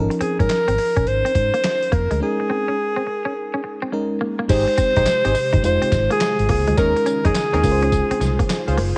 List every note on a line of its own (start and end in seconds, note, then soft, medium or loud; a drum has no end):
0.00 2.16 F3 medium
0.00 2.16 C#4 medium
0.00 2.17 D#4 medium
0.00 2.20 A#4 medium
0.10 muted clean electric guitar stroke soft
0.10 closed hi-hat soft
0.21 0.35 C4 medium
0.21 0.38 G#4 medium
0.21 muted fingered electric bass stroke soft
0.21 closed hi-hat medium
0.39 0.47 G#2 medium
0.39 0.47 C#4 medium
0.39 1.09 A#4 loud
0.39 kick medium
0.39 closed hi-hat medium
0.50 snare loud
0.50 clap medium
0.50 closed hi-hat medium
0.68 0.76 G#1 medium
0.68 0.76 C4 medium
0.68 closed hi-hat medium
0.78 muted clean electric guitar stroke soft
0.78 open hi-hat medium
0.97 1.04 A#1 medium
0.97 1.04 C#4 medium
0.97 kick loud
0.97 closed hi-hat soft
1.06 1.21 G#1 loud
1.06 1.95 C5 loud
1.06 closed hi-hat medium
1.25 1.33 C4 medium
1.25 closed hi-hat medium
1.35 1.50 G#2 loud
1.35 muted clean electric guitar stroke soft
1.35 kick medium
1.35 closed hi-hat medium
1.54 1.61 A#3 medium
1.54 closed hi-hat medium
1.64 muted clean electric guitar stroke soft
1.64 snare loud
1.64 clap medium
1.64 closed hi-hat medium
1.83 closed hi-hat soft
1.92 2.07 F2 loud
1.92 2.06 A#3 medium
1.92 2.21 A#4 medium
1.92 kick medium
1.92 closed hi-hat medium
2.11 2.19 D2 medium
2.11 2.18 G#3 medium
2.11 closed hi-hat medium
2.20 3.88 G#3 medium
2.20 3.89 C#4 medium
2.20 3.89 D#4 medium
2.20 3.89 G#4 medium
2.20 3.90 A#4 medium
2.40 muted clean electric guitar stroke soft
2.50 2.64 C4 medium
2.68 2.76 C#4 medium
2.96 3.04 C4 medium
3.07 muted clean electric guitar stroke soft
3.25 3.33 C#4 medium
3.54 3.61 C#4 medium
3.64 muted clean electric guitar stroke soft
3.82 3.90 C4 medium
3.92 4.47 G#3 medium
3.92 4.49 C#4 medium
3.92 4.48 D#4 medium
3.92 4.50 A#4 medium
3.92 muted clean electric guitar stroke soft
4.21 4.35 A#3 medium
4.39 4.47 A#3 medium
4.48 4.64 G#1 loud
4.48 5.62 C3 medium
4.48 5.61 G#3 medium
4.48 7.61 G#3 medium
4.48 4.65 D#4 medium
4.48 5.61 D#4 medium
4.48 4.65 G4 medium
4.48 5.63 G4 medium
4.48 5.62 G4 medium
4.48 4.65 G#4 medium
4.48 4.65 C5 loud
4.48 5.60 C5 loud
4.48 5.62 C5 medium
4.48 kick loud
4.48 closed hi-hat medium
4.48 crash loud
4.48 tambourine medium
4.68 muted clean electric guitar stroke soft
4.68 closed hi-hat medium
4.78 4.92 C4 medium
4.78 kick loud
4.78 closed hi-hat medium
4.78 tambourine medium
4.96 5.04 A#1 medium
4.96 5.05 D#4 medium
4.96 5.04 D#4 medium
4.96 5.05 G4 medium
4.96 5.05 G#4 medium
4.96 5.05 C5 medium
4.96 kick medium
4.96 closed hi-hat medium
5.06 muted fingered electric bass stroke soft
5.06 snare loud
5.06 clap medium
5.06 closed hi-hat medium
5.06 tambourine medium
5.25 5.33 G#1 medium
5.25 5.32 C4 medium
5.25 5.33 D#4 medium
5.25 5.33 G4 medium
5.25 5.34 G#4 medium
5.25 5.34 C5 medium
5.25 closed hi-hat medium
5.35 muted clean electric guitar stroke soft
5.35 open hi-hat medium
5.35 tambourine medium
5.53 5.61 G1 medium
5.53 5.61 D#4 medium
5.53 kick loud
5.53 closed hi-hat medium
5.63 5.78 F1 loud
5.63 6.76 D#3 medium
5.63 6.75 G#3 medium
5.63 6.76 D#4 medium
5.63 6.76 F4 medium
5.63 6.08 C5 loud
5.63 6.77 C5 medium
5.63 closed hi-hat medium
5.63 tambourine medium
5.82 5.90 C4 medium
5.82 closed hi-hat medium
5.92 6.07 G#1 medium
5.92 muted clean electric guitar stroke soft
5.92 kick medium
5.92 snare medium
5.92 closed hi-hat medium
5.92 tambourine medium
6.10 6.18 A#3 medium
6.10 6.47 G#4 medium
6.10 closed hi-hat medium
6.20 muted clean electric guitar stroke soft
6.20 snare loud
6.20 clap medium
6.20 closed hi-hat medium
6.20 tambourine medium
6.39 6.47 G#1 medium
6.39 closed hi-hat soft
6.49 6.64 C#2 medium
6.49 6.64 A#3 medium
6.49 6.76 G#4 medium
6.49 kick medium
6.49 open hi-hat medium
6.67 6.76 D2 medium
6.67 6.75 G#3 medium
6.67 closed hi-hat medium
6.77 6.92 D#2 loud
6.77 8.98 C#3 medium
6.77 7.61 G#3 medium
6.77 6.93 C#4 loud
6.77 7.62 C#4 medium
6.77 6.93 D#4 medium
6.77 7.63 D#4 medium
6.77 7.64 D#4 medium
6.77 6.94 G#4 medium
6.77 6.94 A#4 loud
6.77 7.22 A#4 medium
6.77 7.64 A#4 medium
6.77 kick loud
6.77 closed hi-hat medium
6.77 tambourine medium
6.96 muted clean electric guitar stroke soft
6.96 closed hi-hat medium
7.06 7.21 C#4 medium
7.06 closed hi-hat medium
7.06 tambourine medium
7.25 7.33 F2 loud
7.25 7.33 C#4 medium
7.25 7.33 D#4 medium
7.25 7.32 D#4 medium
7.25 7.33 G#4 medium
7.25 8.74 G#4 loud
7.25 7.33 A#4 medium
7.25 kick medium
7.25 closed hi-hat medium
7.35 muted fingered electric bass stroke soft
7.35 snare loud
7.35 clap medium
7.35 closed hi-hat medium
7.35 tambourine loud
7.53 7.61 D#2 loud
7.53 7.61 C4 medium
7.53 7.62 C#4 medium
7.53 7.62 D#4 medium
7.53 7.62 G#4 medium
7.53 7.62 A#4 medium
7.53 closed hi-hat medium
7.63 8.01 C#2 loud
7.63 8.98 G#3 medium
7.63 8.98 C#4 medium
7.63 8.98 F4 medium
7.63 7.73 A#4 medium
7.63 8.98 C5 medium
7.63 muted clean electric guitar stroke soft
7.63 kick medium
7.63 open hi-hat medium
7.63 tambourine medium
7.72 8.98 C5 medium
7.82 7.90 C#4 medium
7.82 closed hi-hat soft
7.92 kick medium
7.92 closed hi-hat medium
7.92 tambourine medium
8.11 8.19 C4 medium
8.11 muted fingered electric bass stroke soft
8.11 closed hi-hat medium
8.21 8.35 C2 loud
8.21 muted clean electric guitar stroke soft
8.21 snare medium
8.21 closed hi-hat medium
8.21 tambourine medium
8.39 8.47 A#3 medium
8.39 kick loud
8.39 closed hi-hat medium
8.50 muted clean electric guitar stroke soft
8.50 snare loud
8.50 clap medium
8.50 closed hi-hat medium
8.50 tambourine loud
8.67 8.76 C#2 medium
8.67 8.76 C#4 medium
8.67 8.76 F4 medium
8.67 8.76 G#4 medium
8.67 8.76 C5 medium
8.67 closed hi-hat soft
8.77 8.93 F#1 medium
8.77 8.92 A#3 medium
8.77 open hi-hat medium